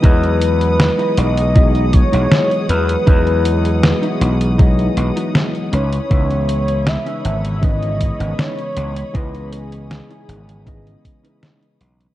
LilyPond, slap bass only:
\new Staff \with { instrumentName = "Slap bass" } { \clef bass \time 4/4 \key e \major \tempo 4 = 79 e,4 r8 b,,4 r16 b,,16 r8 e,16 r16 | e,4 r8 b,,8. r16 b,,16 r8. cis,16 r16 | cis,4 r8 gis,,4 r16 gis,,16 r8 cis,16 r16 | cis,4 r8 gis,,8. r4 r16 b,,16 r16 | }